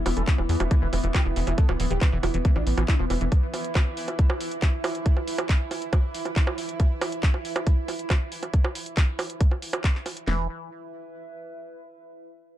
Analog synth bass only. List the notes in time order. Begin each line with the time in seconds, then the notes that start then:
0.06 E1
0.17 E1
0.38 E1
0.49 E2
0.60 E1
0.82 E1
0.93 E1
1.04 E1
1.25 E1
1.36 E1
1.47 E1
1.69 D1
1.80 D1
1.91 D1
2.12 E1
2.23 E1
2.34 E1
2.56 A1
2.67 A1
2.78 A1
2.99 E1
3.10 E1
3.21 E1
10.28 E1